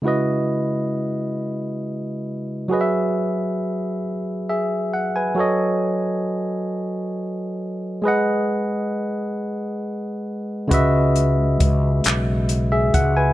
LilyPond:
<<
  \new Staff \with { instrumentName = "Tine electric piano" } { \time 6/8 \key cis \minor \tempo 4. = 45 << { r2. | r2 <gis' e''>8 fis''16 <b' gis''>16~ | <b' gis''>16 r2 r8. | r2. |
r2 r16 <gis' e''>16 fis''16 <b' gis''>16 | } \\ { <cis gis e' fis' b' dis''>2. | <fis fis' gis' b' dis'' e''>2. | <fis fis' a' cis'' dis''>2. | <gis gis' b' dis'' fis''>2. |
<cis gis fis' b' dis'' e''>2. | } >> }
  \new Staff \with { instrumentName = "Fretless electric bass" } { \clef bass \time 6/8 \key cis \minor r2. | r2. | r2. | r2. |
cis,4 cis,8 b,,4 cis,8 | }
  \new DrumStaff \with { instrumentName = "Drums" } \drummode { \time 6/8 r4. r4. | r4. r4. | r4. r4. | r4. r4. |
<hh bd>8 hh8 <hh bd>8 <hc hh>8 hh8 <hh bd>8 | }
>>